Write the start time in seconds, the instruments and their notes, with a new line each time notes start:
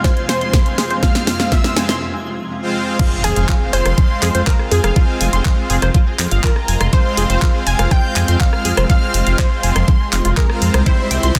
Already playing: ambient pad F2 C3 G#3 F4, supersaw synth G#3 C4 F4 C5 F5, synth texture G#6
0.04 synth arpeggio sound F4, synth pluck C5, violin section C6, kick, snare, closed hi-hat
0.17 closed hi-hat
0.29 synth pluck C5, synth arpeggio sound G#5, violin section C6, snare, open hi-hat
0.41 synth arpeggio sound C6, closed hi-hat
0.53 kick, snare, closed hi-hat
0.66 closed hi-hat
0.78 synth arpeggio sound G#4, snare, open hi-hat
0.91 synth arpeggio sound C5, closed hi-hat
1.03 supersaw synth G#3 C4 F4 C5 F5, synth arpeggio sound F4, synth pluck F5, violin section F6, kick, snare, closed hi-hat
1.15 snare, closed hi-hat
1.27 snare, open hi-hat
1.40 synth arpeggio sound F5, snare, closed hi-hat
1.52 synth arpeggio sound F4, synth pluck E5, violin section E6, kick, snare, closed hi-hat
1.64 snare, closed hi-hat
1.76 supersaw synth G#3 C4 F4 C5 F5, synth arpeggio sound G#5, snare, open hi-hat
1.89 synth arpeggio sound C6, snare, closed hi-hat
2.63 supersaw synth G#3 C4 F4 C5 F5
2.99 supersaw synth G#3, ambient pad G#3 C4 F4, synth arpeggio sound F4, kick, closed hi-hat, crash, impact
3.24 detuned saw bass F1, synth pluck G#4, violin section G#5, open hi-hat
3.36 detuned saw bass F1, synth arpeggio sound F5, closed hi-hat
3.49 synth arpeggio sound F4, kick, clap, closed hi-hat
3.73 detuned saw bass F1, supersaw synth G#3 C4 F4 C5 F5, synth pluck C5, synth arpeggio sound G#5, violin section C6, open hi-hat
3.86 detuned saw bass F1, synth arpeggio sound C6, cross-stick, closed hi-hat
3.98 kick, closed hi-hat
4.22 detuned saw bass F2, synth arpeggio sound G#4, clap, open hi-hat
4.35 detuned saw bass F2, synth arpeggio sound C5, closed hi-hat
4.47 synth arpeggio sound F4, synth pluck A#4, violin section A#5, kick, clap, closed hi-hat
4.59 cross-stick
4.71 detuned saw bass F2, synth pluck G#4, violin section G#5, open hi-hat
4.84 detuned saw bass F1, synth arpeggio sound F5, cross-stick, closed hi-hat
4.96 supersaw synth G#3 C4 F4 C5 F5, synth arpeggio sound F4, kick, closed hi-hat
5.21 detuned saw bass F1, synth arpeggio sound G#5, open hi-hat
5.33 detuned saw bass F1, synth arpeggio sound C6, closed hi-hat
5.45 kick, clap, closed hi-hat
5.70 detuned saw bass F1, supersaw synth G#3 C4 F4 C5 F5, synth arpeggio sound G#4, open hi-hat
5.82 detuned saw bass F1, synth arpeggio sound C5, cross-stick, closed hi-hat
5.94 synth arpeggio sound F4, kick, closed hi-hat
6.19 detuned saw bass F2, clap, open hi-hat
6.31 detuned saw bass G1, synth arpeggio sound F5, closed hi-hat
6.44 synth arpeggio sound F4, synth pluck A#4, violin section A#5, kick, clap, closed hi-hat
6.56 cross-stick
6.68 detuned saw bass F1, synth arpeggio sound G#5, open hi-hat
6.81 detuned saw bass F1, synth arpeggio sound C6, cross-stick, closed hi-hat
6.93 supersaw synth G#3 C4 F4 C5 F5, synth pluck C5, violin section C6, kick, closed hi-hat
7.17 detuned saw bass F1, synth arpeggio sound G#4, open hi-hat
7.30 detuned saw bass F1, synth arpeggio sound C5, closed hi-hat
7.42 synth arpeggio sound F4, kick, clap, closed hi-hat
7.67 detuned saw bass F1, supersaw synth G#3 C4 F4 C5 F5, synth pluck G#5, violin section G#6, open hi-hat
7.79 detuned saw bass F1, synth arpeggio sound F5, cross-stick, closed hi-hat
7.91 synth arpeggio sound F4, synth pluck G5, violin section G6, kick, closed hi-hat
8.16 detuned saw bass F2, synth arpeggio sound G#5, clap, open hi-hat
8.28 detuned saw bass F2, synth arpeggio sound C6, closed hi-hat
8.40 synth pluck F5, violin section F6, kick, clap, closed hi-hat
8.53 cross-stick
8.65 detuned saw bass F2, synth arpeggio sound G#4, open hi-hat
8.77 detuned saw bass F1, synth arpeggio sound C5, cross-stick, closed hi-hat
8.90 supersaw synth G#3 C4 F4 C5 F5, synth arpeggio sound F4, synth pluck F5, violin section F6, kick, closed hi-hat
9.14 detuned saw bass F1, open hi-hat
9.27 detuned saw bass F1, synth arpeggio sound F5, closed hi-hat
9.39 synth arpeggio sound F4, synth pluck C5, violin section C6, kick, clap, closed hi-hat
9.63 detuned saw bass F1, supersaw synth G#3 C4 F4 C5 F5, synth arpeggio sound G#5, open hi-hat
9.76 detuned saw bass F1, synth arpeggio sound C6, cross-stick, closed hi-hat
9.88 kick, closed hi-hat
10.13 detuned saw bass F1, synth arpeggio sound F5, clap, open hi-hat
10.25 detuned saw bass F1, synth arpeggio sound F4, closed hi-hat
10.37 synth arpeggio sound G#4, synth pluck A#4, violin section A#5, kick, clap, closed hi-hat
10.50 supersaw synth G#3 C4 F4 C5 F5, cross-stick
10.62 detuned saw bass F2, open hi-hat
10.74 detuned saw bass C2, synth arpeggio sound C5, cross-stick, closed hi-hat
10.86 ambient pad C3 C4 E4 G4, supersaw synth G3 C4 E4 C5 E5, synth arpeggio sound E4, synth pluck C5, violin section C6, kick, closed hi-hat
11.11 detuned saw bass C2, synth arpeggio sound G5, open hi-hat
11.23 detuned saw bass C2, synth arpeggio sound C6, closed hi-hat
11.35 kick, clap, closed hi-hat